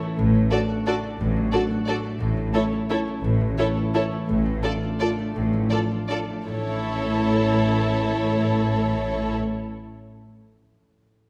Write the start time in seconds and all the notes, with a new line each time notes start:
Already playing: A2 E3 C#4 E4 A4 C#5 E5
0.03 A3
0.18 A1 A2
0.35 A3
0.51 D4 F#4 A4 D5
0.69 F#4
0.86 D4 F#4 A4 D5
1.04 A3
1.20 A1 A2
1.36 F#3
1.53 D4 F#4 A4 D5
1.70 F#4
1.88 D4 F#4 A4 D5
2.05 A3
2.20 A1 A2
2.37 A3
2.54 C#4 E4 A4 C#5
2.72 E4
2.90 C#4 E4 A4 C#5
3.08 A3
3.24 A1 A2
3.41 E3
3.58 C#4 E4 A4 C#5
3.77 E4
3.94 C#4 E4 A4 C#5
4.12 A3
4.29 A1 A2
4.46 A3
4.63 D4 F4 A4 D5
4.83 F4
5.00 D4 F4 A4 D5
5.19 A3
5.36 A1 A2
5.53 F3
5.71 D4 F4 A4 D5
5.91 F4
6.10 D4 F4 A4 D5
6.30 A3
6.47 A1 A2 E4 A4 C#5
6.55 A3
6.62 C#4
6.69 E4
6.76 C#5